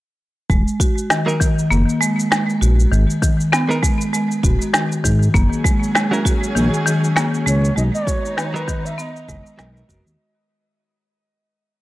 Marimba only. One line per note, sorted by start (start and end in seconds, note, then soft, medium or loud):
0.50 0.66 G#3 medium
0.80 0.90 F#4 medium
1.10 1.39 D#3 medium
1.40 1.57 D#3 medium
1.71 1.81 A#3 loud
2.01 2.17 G#3 loud
2.31 2.48 G#3 medium
2.61 2.71 F#4 medium
2.92 3.21 D#3 medium
3.22 3.39 D#3 medium
3.52 3.62 B3 loud
3.83 3.99 G#3 medium
4.13 4.30 G#3 medium
4.43 4.53 F#4 medium
4.73 5.03 D#3 medium
5.04 5.20 D#3 medium
5.34 5.44 A#3 medium
5.64 5.81 G#3 medium
5.95 6.11 G#3 medium
6.25 6.35 F#4 medium
6.55 6.85 D#3 medium
6.86 7.02 D#3 loud
7.16 7.26 A#3 medium
7.46 7.63 G#3 medium
7.76 7.93 G#3 medium
8.07 8.17 F#4 medium
8.37 8.66 D#3 medium
8.68 8.84 D#3 loud
8.98 9.08 B3 loud
9.28 9.45 G#3 loud
9.89 9.99 F#4 medium